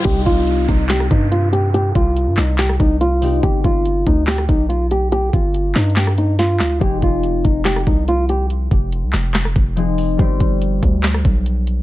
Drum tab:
HH |x-----x-----x-----x-----x-----x-----x-----x-----|x-----x-----x-----x-----x-----x-----x-----o-----|x-----x-----x-----x-----x-----x-----x-----x-----|x-----x-----x-----x-x-x-x-----x-----x-----x-----|
CP |------------------------x-----------------------|------------------x-----x-----------------------|------------------------x-----------------------|------------------x-----x-----------------x-----|
SD |------------------------o--r--------------------|------------------o-----o--r--------------------|------------------------o--r--------------------|------------------o-----o--r--------o-----o-----|
BD |o-----o-----------o-----------o-----------------|------o-----------------------o-----------------|o-----o-----------o-----------o-----------------|------o-----------------------------------------|

HH |x-----x-----x-----x-----x-----x-----x-----x-----|x-----x-----x-----x-----x-----x-----x-----o-----|x-----x-----x-----x-----x-----x-----x-----x-----|
CP |------------------------x-----------------------|------------------x-----x-----------------------|------------------------x-----------------------|
SD |------------------------o--r--------------------|------------------o-----o--r--------------------|------------------------o--r--------------------|
BD |o-----o-----------o-----------o-----------------|------o-----------------------o-----------------|o-----o-----------o-----------o-----------------|